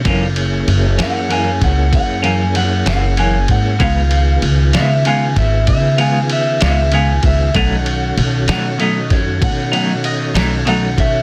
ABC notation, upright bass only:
X:1
M:12/8
L:1/8
Q:3/8=64
K:C#dor
V:1 name="Upright bass" clef=bass
F,,,2 F,,, F,,2 C,, F,,3 F,,,2 G,, | C,,2 C,, C,2 G,,, C,3 C,,2 C,, | B,,,2 B,,, B,,2 F,, B,,3 B,,,2 B,, |]